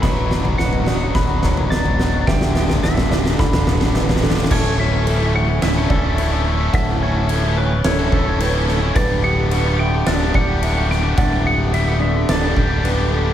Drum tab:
CC |x-------------------------------|--------------------------------|x-------x-------x-------x-------|x-------x-------x-------x-------|
SD |o---o---o---o---o---o---o---o---|o-o-o-o-o-o-o-o-o-o-o-o-o-oooooo|----------------o---------------|----------------o-----------o---|
T2 |--------------------o-----------|------------------o-o-----------|--------------------------------|--------------------------------|
FT |o-----o---o-----o-----o---o-----|o-----o---o-----o-----o---o-----|--------------------------------|--------------------------------|
BD |o---------------o---o-----------|o---------------o---------------|o-------------------o-----------|o-------------------o-----------|

CC |x-------x-------x-------x-------|x-------x-------x-------x-------|
SD |----------------o-----------o---|----------------o---------------|
T2 |--------------------------------|--------------------------------|
FT |--------------------------------|--------------------------------|
BD |o-------------------o-----------|o-------------------o-----------|